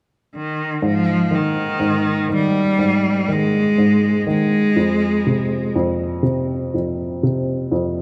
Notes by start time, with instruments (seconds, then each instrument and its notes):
0.35 cello D#3
0.82 upright piano G#2, cello F3
1.31 upright piano D#3
1.35 cello D#3
1.80 upright piano G#2
2.29 upright piano D#3, cello G3
2.79 upright piano G#2
3.28 upright piano D#3, cello G#3
3.78 upright piano G#2
4.27 upright piano D#3, cello G#3
4.76 upright piano F2
5.26 upright piano C3
5.76 upright piano F2
6.23 upright piano C3
6.74 upright piano F2
7.23 upright piano C3
7.72 upright piano F2